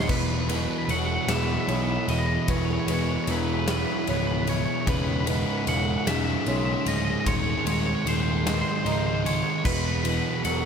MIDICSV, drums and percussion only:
0, 0, Header, 1, 2, 480
1, 0, Start_track
1, 0, Tempo, 796073
1, 62, Time_signature, 6, 3, 24, 8
1, 6423, End_track
2, 0, Start_track
2, 0, Title_t, "Drums"
2, 55, Note_on_c, 9, 49, 115
2, 56, Note_on_c, 9, 36, 117
2, 115, Note_off_c, 9, 49, 0
2, 117, Note_off_c, 9, 36, 0
2, 298, Note_on_c, 9, 51, 94
2, 358, Note_off_c, 9, 51, 0
2, 537, Note_on_c, 9, 51, 97
2, 598, Note_off_c, 9, 51, 0
2, 775, Note_on_c, 9, 38, 106
2, 775, Note_on_c, 9, 51, 114
2, 835, Note_off_c, 9, 38, 0
2, 835, Note_off_c, 9, 51, 0
2, 1016, Note_on_c, 9, 51, 82
2, 1076, Note_off_c, 9, 51, 0
2, 1257, Note_on_c, 9, 51, 74
2, 1317, Note_off_c, 9, 51, 0
2, 1495, Note_on_c, 9, 51, 117
2, 1498, Note_on_c, 9, 36, 119
2, 1556, Note_off_c, 9, 51, 0
2, 1558, Note_off_c, 9, 36, 0
2, 1737, Note_on_c, 9, 51, 94
2, 1797, Note_off_c, 9, 51, 0
2, 1974, Note_on_c, 9, 51, 102
2, 2034, Note_off_c, 9, 51, 0
2, 2217, Note_on_c, 9, 38, 118
2, 2217, Note_on_c, 9, 51, 110
2, 2277, Note_off_c, 9, 38, 0
2, 2277, Note_off_c, 9, 51, 0
2, 2456, Note_on_c, 9, 51, 82
2, 2517, Note_off_c, 9, 51, 0
2, 2697, Note_on_c, 9, 51, 70
2, 2757, Note_off_c, 9, 51, 0
2, 2938, Note_on_c, 9, 36, 123
2, 2938, Note_on_c, 9, 51, 118
2, 2998, Note_off_c, 9, 51, 0
2, 2999, Note_off_c, 9, 36, 0
2, 3177, Note_on_c, 9, 51, 87
2, 3238, Note_off_c, 9, 51, 0
2, 3419, Note_on_c, 9, 51, 98
2, 3479, Note_off_c, 9, 51, 0
2, 3661, Note_on_c, 9, 38, 110
2, 3661, Note_on_c, 9, 51, 120
2, 3721, Note_off_c, 9, 38, 0
2, 3721, Note_off_c, 9, 51, 0
2, 3898, Note_on_c, 9, 51, 83
2, 3958, Note_off_c, 9, 51, 0
2, 4139, Note_on_c, 9, 51, 79
2, 4199, Note_off_c, 9, 51, 0
2, 4380, Note_on_c, 9, 36, 119
2, 4380, Note_on_c, 9, 51, 121
2, 4440, Note_off_c, 9, 51, 0
2, 4441, Note_off_c, 9, 36, 0
2, 4623, Note_on_c, 9, 51, 94
2, 4683, Note_off_c, 9, 51, 0
2, 4865, Note_on_c, 9, 51, 103
2, 4925, Note_off_c, 9, 51, 0
2, 5105, Note_on_c, 9, 38, 116
2, 5105, Note_on_c, 9, 51, 111
2, 5166, Note_off_c, 9, 38, 0
2, 5166, Note_off_c, 9, 51, 0
2, 5342, Note_on_c, 9, 51, 86
2, 5403, Note_off_c, 9, 51, 0
2, 5584, Note_on_c, 9, 51, 82
2, 5645, Note_off_c, 9, 51, 0
2, 5819, Note_on_c, 9, 49, 123
2, 5820, Note_on_c, 9, 36, 127
2, 5879, Note_off_c, 9, 49, 0
2, 5880, Note_off_c, 9, 36, 0
2, 6059, Note_on_c, 9, 51, 88
2, 6119, Note_off_c, 9, 51, 0
2, 6299, Note_on_c, 9, 51, 100
2, 6359, Note_off_c, 9, 51, 0
2, 6423, End_track
0, 0, End_of_file